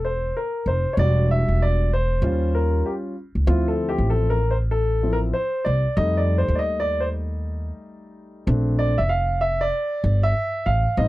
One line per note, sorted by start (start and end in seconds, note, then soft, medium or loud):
0.00 0.31 E1 medium
0.05 0.37 C5 medium
0.37 0.68 A#4 medium
0.66 0.84 F1 medium
0.66 0.94 C5 medium
0.93 1.45 E1 loud
0.93 0.98 C#5 medium
0.97 1.87 G3 medium
0.97 1.88 D4 soft
0.97 1.88 F#4 medium
0.97 1.28 D5 loud
1.31 1.62 E5 loud
1.48 2.19 E1 medium
1.62 1.90 D5 loud
1.93 2.57 C5 medium
2.22 2.81 D#2 loud
2.22 3.12 G3 medium
2.22 3.13 C#4 medium
2.22 3.13 F4 medium
2.55 2.87 A#4 medium
2.86 2.93 G4 medium
3.35 3.46 C#2 medium
3.47 3.95 D2 loud
3.47 4.37 F3 medium
3.47 4.37 C4 medium
3.47 4.38 E4 medium
3.47 3.69 F4 medium
3.68 3.90 A4 medium
3.89 4.08 G4 medium
3.98 5.31 A1 medium
4.10 4.29 A4 medium
4.30 4.52 A#4 medium
4.51 4.56 C5 medium
4.71 5.11 A4 medium
5.03 5.32 F3 medium
5.03 5.32 C4 soft
5.03 5.32 E4 medium
5.13 5.18 A#4 medium
5.34 5.67 C5 medium
5.65 5.85 C2 medium
5.65 5.95 D5 medium
5.97 6.45 F2 loud
5.97 8.43 G3 medium
5.97 8.44 A3 medium
5.97 8.44 D#4 medium
5.97 6.19 D#5 loud
6.17 6.39 D5 medium
6.38 6.56 C5 medium
6.48 7.70 D#2 medium
6.55 6.60 D5 medium
6.55 6.81 D#5 loud
6.80 7.02 D5 medium
7.00 7.08 C5 medium
8.47 8.95 A#1 loud
8.47 8.92 A3 medium
8.47 8.92 C4 medium
8.47 8.92 D4 medium
8.79 8.99 D5 loud
8.98 9.69 F1 medium
8.98 9.10 E5 loud
9.09 9.42 F5 loud
9.41 9.62 E5 loud
9.61 10.26 D5 loud
10.04 10.32 G1 loud
10.23 10.67 E5 loud
10.66 10.85 A1 medium
10.66 10.98 F5 loud
10.97 11.08 A1 loud
10.97 11.08 G3 medium
10.97 11.08 C4 medium
10.97 11.08 D#4 medium
10.97 11.08 D#5 loud